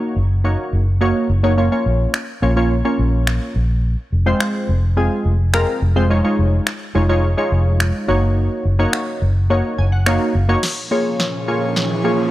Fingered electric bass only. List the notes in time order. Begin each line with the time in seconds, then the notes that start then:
0.16 F#1
0.73 F#1
1.29 F#1
1.86 A#1
2.42 A#1
2.99 A#1
3.56 A#1
4.12 F1
4.69 F1
5.25 F1
5.82 F1
6.39 F1
6.95 F1
7.52 F1
8.09 F#1
8.65 F#1
9.22 F#1
9.78 F#1
10.35 F#1